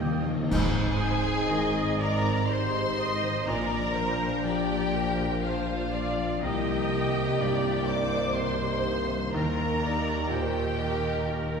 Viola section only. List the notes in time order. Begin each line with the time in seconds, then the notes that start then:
Already playing: A#3
0.49 C5
1.50 D#5
1.99 D5
2.49 C5
2.98 D#5
3.48 D5
3.96 C5
4.45 D5
4.95 A#4
5.44 C5
5.93 D5
6.42 D#5
7.41 D5
7.88 C5
9.35 A#4
9.83 D5
10.31 C5
10.79 A#4